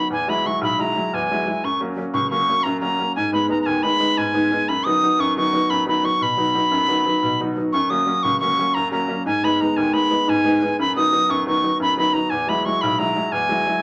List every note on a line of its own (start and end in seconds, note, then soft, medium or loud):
0.10 0.43 E2 medium
0.10 0.31 G#5 medium
0.28 0.43 F#3 soft
0.28 0.44 G#3 soft
0.28 0.44 E4 medium
0.28 0.48 B5 medium
0.45 0.72 F#3 soft
0.45 0.72 G#3 soft
0.45 0.72 E4 medium
0.45 0.62 C#6 medium
0.61 0.94 B1 medium
0.61 0.82 B5 medium
0.79 0.94 F#3 soft
0.79 0.95 G#3 soft
0.79 0.95 E4 medium
0.79 1.16 A#5 medium
0.96 1.23 F#3 soft
0.96 1.23 G#3 soft
0.96 1.23 E4 soft
1.13 1.46 E2 medium
1.13 1.66 G#5 medium
1.31 1.44 F#3 soft
1.31 1.45 G#3 soft
1.31 1.45 E4 medium
1.46 1.59 F#3 soft
1.46 1.60 G#3 soft
1.46 1.60 E4 soft
1.64 1.96 F#2 medium
1.64 1.81 C#6 medium
1.81 1.95 F#3 soft
1.81 1.95 A#3 soft
1.81 1.96 C#4 medium
1.96 2.24 F#3 soft
1.96 2.24 A#3 soft
1.96 2.24 C#4 medium
2.14 2.47 C#2 medium
2.14 2.30 C#6 medium
2.31 2.47 F#3 soft
2.31 2.47 A#3 soft
2.31 2.48 C#4 medium
2.31 2.65 C#6 medium
2.49 2.75 F#3 soft
2.49 2.76 A#3 soft
2.49 2.76 C#4 soft
2.63 2.98 F#2 medium
2.63 2.80 A#5 medium
2.81 2.97 F#3 soft
2.81 2.98 A#3 soft
2.81 2.98 C#4 soft
2.81 3.13 A#5 medium
2.99 3.12 F#3 soft
2.99 3.13 A#3 soft
2.99 3.13 C#4 soft
3.16 3.49 G#2 medium
3.16 3.31 G#5 medium
3.33 3.47 G#3 soft
3.33 3.47 B3 soft
3.33 3.48 D#4 medium
3.33 3.49 B5 medium
3.49 3.76 G#3 soft
3.49 3.76 B3 soft
3.49 3.77 D#4 soft
3.49 3.61 A#5 medium
3.62 3.67 A#5 medium
3.66 3.99 D#2 medium
3.66 3.84 G#5 medium
3.83 3.98 G#3 soft
3.83 3.98 B3 soft
3.83 3.99 D#4 medium
3.83 4.19 B5 medium
4.00 4.27 G#3 soft
4.00 4.27 B3 soft
4.00 4.27 D#4 soft
4.17 4.50 G#2 medium
4.17 4.70 G#5 medium
4.34 4.49 G#3 soft
4.34 4.50 B3 soft
4.34 4.50 D#4 medium
4.51 4.65 G#3 soft
4.51 4.65 B3 soft
4.51 4.65 D#4 soft
4.69 5.01 F#2 medium
4.69 4.87 B5 medium
4.85 5.01 F#3 soft
4.85 5.02 B3 soft
4.85 5.02 D#4 medium
4.85 5.22 D#6 loud
5.03 5.30 F#3 soft
5.03 5.30 B3 soft
5.03 5.30 D#4 medium
5.19 5.52 F#2 medium
5.19 5.37 C#6 medium
5.36 5.52 F#3 soft
5.36 5.52 B3 soft
5.36 5.53 D#4 medium
5.36 5.71 C#6 medium
5.53 5.80 F#3 soft
5.53 5.80 B3 soft
5.53 5.81 D#4 medium
5.70 6.03 F#2 medium
5.70 5.87 B5 medium
5.86 6.02 F#3 soft
5.86 6.03 B3 soft
5.86 6.03 D#4 medium
5.86 6.06 B5 medium
6.03 6.17 F#3 soft
6.03 6.18 B3 soft
6.03 6.18 D#4 soft
6.03 6.24 C#6 medium
6.21 6.54 B2 medium
6.21 7.40 B5 medium
6.37 6.53 F#3 medium
6.37 6.54 B3 soft
6.37 6.54 D#4 soft
6.55 6.82 F#3 soft
6.55 6.82 B3 soft
6.55 6.82 D#4 medium
6.71 7.04 F#2 medium
6.88 7.04 F#3 soft
6.88 7.04 B3 soft
6.88 7.05 D#4 soft
7.06 7.33 F#3 soft
7.06 7.33 B3 soft
7.06 7.33 D#4 soft
7.23 7.55 B2 medium
7.40 7.55 F#3 soft
7.40 7.55 B3 soft
7.40 7.56 D#4 medium
7.56 7.70 F#3 soft
7.56 7.70 B3 soft
7.56 7.71 D#4 soft
7.73 8.07 F#2 medium
7.73 7.92 C#6 medium
7.90 8.05 F#3 soft
7.90 8.05 A#3 soft
7.90 8.06 C#4 medium
7.90 8.24 D#6 loud
8.06 8.34 F#3 soft
8.06 8.34 A#3 soft
8.06 8.34 C#4 medium
8.23 8.57 C#2 medium
8.23 8.39 C#6 medium
8.40 8.57 F#3 soft
8.40 8.58 A#3 soft
8.40 8.58 C#4 medium
8.40 8.76 C#6 medium
8.59 8.85 F#3 soft
8.59 8.86 A#3 soft
8.59 8.86 C#4 medium
8.74 9.09 F#2 medium
8.74 8.91 A#5 medium
8.91 9.07 F#3 soft
8.91 9.07 A#3 soft
8.91 9.08 C#4 medium
8.91 9.23 A#5 medium
9.08 9.22 F#3 soft
9.08 9.22 A#3 soft
9.08 9.23 C#4 medium
9.26 9.59 G#2 medium
9.26 9.46 G#5 medium
9.43 9.59 G#3 soft
9.43 9.60 B3 soft
9.43 9.60 D#4 medium
9.43 9.62 B5 medium
9.60 9.87 G#3 soft
9.60 9.88 B3 soft
9.60 9.88 D#4 medium
9.60 9.78 A#5 medium
9.76 10.10 D#2 medium
9.76 9.95 G#5 medium
9.93 10.09 G#3 medium
9.93 10.09 B3 soft
9.93 10.10 D#4 medium
9.93 10.31 B5 medium
10.10 10.38 G#3 soft
10.10 10.38 B3 soft
10.10 10.38 D#4 soft
10.28 10.60 G#2 medium
10.28 10.79 G#5 medium
10.44 10.61 G#3 medium
10.44 10.61 B3 soft
10.44 10.61 D#4 medium
10.62 10.76 G#3 soft
10.62 10.76 B3 soft
10.62 10.76 D#4 soft
10.79 11.12 F#2 medium
10.79 10.95 B5 medium
10.96 11.11 F#3 soft
10.96 11.11 B3 soft
10.96 11.12 D#4 medium
10.96 11.32 D#6 medium
11.12 11.39 F#3 medium
11.12 11.40 B3 soft
11.12 11.40 D#4 medium
11.29 11.62 F#2 medium
11.29 11.47 C#6 medium
11.46 11.62 F#3 soft
11.46 11.62 B3 soft
11.46 11.63 D#4 medium
11.46 11.78 C#6 loud
11.64 11.90 F#3 soft
11.64 11.91 B3 soft
11.64 11.91 D#4 medium
11.80 12.13 F#2 medium
11.80 11.97 B5 medium
11.97 12.13 F#3 soft
11.97 12.13 B3 soft
11.97 12.13 D#4 medium
11.97 12.15 B5 medium
12.13 12.28 F#3 soft
12.13 12.28 B3 soft
12.13 12.28 D#4 soft
12.13 12.31 A#5 medium
12.30 12.64 E2 medium
12.30 12.50 G#5 medium
12.47 12.64 F#3 soft
12.47 12.65 G#3 soft
12.47 12.65 E4 medium
12.47 12.67 B5 medium
12.65 12.92 F#3 soft
12.65 12.93 G#3 soft
12.65 12.93 E4 medium
12.65 12.83 C#6 medium
12.81 13.15 B1 medium
12.81 13.00 B5 medium
12.99 13.14 F#3 soft
12.99 13.15 G#3 soft
12.99 13.15 E4 medium
12.99 13.34 A#5 medium
13.16 13.43 F#3 soft
13.16 13.43 G#3 soft
13.16 13.43 E4 soft
13.32 13.65 E2 medium
13.32 13.82 G#5 medium
13.49 13.65 F#3 medium
13.49 13.65 G#3 soft
13.49 13.65 E4 medium
13.66 13.80 F#3 soft
13.66 13.80 G#3 soft
13.66 13.80 E4 soft